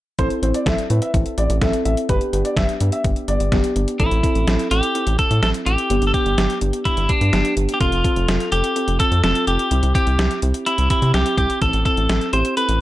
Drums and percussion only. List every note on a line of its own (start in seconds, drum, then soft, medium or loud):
0.19 kick loud
0.19 closed hi-hat medium
0.30 closed hi-hat soft
0.43 closed hi-hat medium
0.54 closed hi-hat soft
0.66 kick loud
0.66 snare loud
0.66 closed hi-hat medium
0.78 closed hi-hat soft
0.90 closed hi-hat medium
1.02 closed hi-hat medium
1.14 kick loud
1.14 closed hi-hat medium
1.26 closed hi-hat soft
1.38 closed hi-hat medium
1.50 closed hi-hat medium
1.62 kick loud
1.62 snare loud
1.62 closed hi-hat medium
1.73 closed hi-hat medium
1.85 closed hi-hat medium
1.97 closed hi-hat soft
2.09 kick loud
2.09 closed hi-hat medium
2.21 closed hi-hat soft
2.33 closed hi-hat medium
2.45 closed hi-hat soft
2.57 kick loud
2.57 snare loud
2.57 closed hi-hat medium
2.69 closed hi-hat soft
2.80 closed hi-hat medium
2.92 closed hi-hat medium
3.04 kick loud
3.04 closed hi-hat medium
3.16 closed hi-hat soft
3.28 closed hi-hat medium
3.40 closed hi-hat medium
3.52 kick loud
3.52 snare loud
3.52 closed hi-hat medium
3.64 closed hi-hat medium
3.76 closed hi-hat medium
3.88 closed hi-hat soft
4.00 kick medium
4.00 closed hi-hat medium
4.11 closed hi-hat soft
4.23 kick medium
4.23 closed hi-hat medium
4.35 closed hi-hat soft
4.47 snare loud
4.47 closed hi-hat medium
4.59 closed hi-hat soft
4.71 closed hi-hat medium
4.83 closed hi-hat medium
4.95 closed hi-hat medium
5.07 closed hi-hat medium
5.19 kick medium
5.19 closed hi-hat medium
5.31 closed hi-hat medium
5.43 snare loud
5.43 closed hi-hat medium
5.54 closed hi-hat medium
5.66 closed hi-hat medium
5.78 closed hi-hat soft
5.90 closed hi-hat medium
6.02 closed hi-hat soft
6.14 kick medium
6.14 closed hi-hat medium
6.26 closed hi-hat soft
6.38 snare loud
6.38 closed hi-hat medium
6.50 closed hi-hat soft
6.61 closed hi-hat medium
6.73 closed hi-hat medium
6.85 kick medium
6.85 closed hi-hat medium
6.97 closed hi-hat soft
7.09 kick medium
7.09 closed hi-hat medium
7.21 closed hi-hat medium
7.33 snare loud
7.33 closed hi-hat medium
7.45 closed hi-hat medium
7.57 closed hi-hat medium
7.69 closed hi-hat soft
7.81 kick loud
7.81 closed hi-hat medium
7.92 closed hi-hat soft
8.04 kick medium
8.04 closed hi-hat medium
8.16 closed hi-hat soft
8.28 snare loud
8.28 closed hi-hat medium
8.40 closed hi-hat soft
8.52 closed hi-hat medium
8.64 closed hi-hat medium
8.76 closed hi-hat medium
8.88 closed hi-hat medium
9.00 kick medium
9.00 closed hi-hat medium
9.12 closed hi-hat medium
9.24 snare loud
9.24 closed hi-hat medium
9.35 closed hi-hat medium
9.47 closed hi-hat medium
9.59 closed hi-hat soft
9.71 closed hi-hat medium
9.83 closed hi-hat soft
9.95 kick medium
9.95 closed hi-hat medium
10.07 closed hi-hat soft
10.19 snare loud
10.19 closed hi-hat medium
10.31 closed hi-hat soft
10.42 closed hi-hat medium
10.54 closed hi-hat medium
10.66 closed hi-hat medium
10.78 closed hi-hat medium
10.90 kick medium
10.90 closed hi-hat medium
11.02 closed hi-hat medium
11.14 snare loud
11.14 closed hi-hat medium
11.26 closed hi-hat medium
11.38 kick medium
11.38 closed hi-hat medium
11.50 closed hi-hat soft
11.62 kick medium
11.62 closed hi-hat medium
11.73 closed hi-hat soft
11.85 kick medium
11.85 closed hi-hat medium
11.97 closed hi-hat soft
12.09 snare loud
12.09 closed hi-hat medium
12.21 closed hi-hat soft
12.33 closed hi-hat medium
12.45 closed hi-hat medium
12.57 closed hi-hat medium
12.69 closed hi-hat medium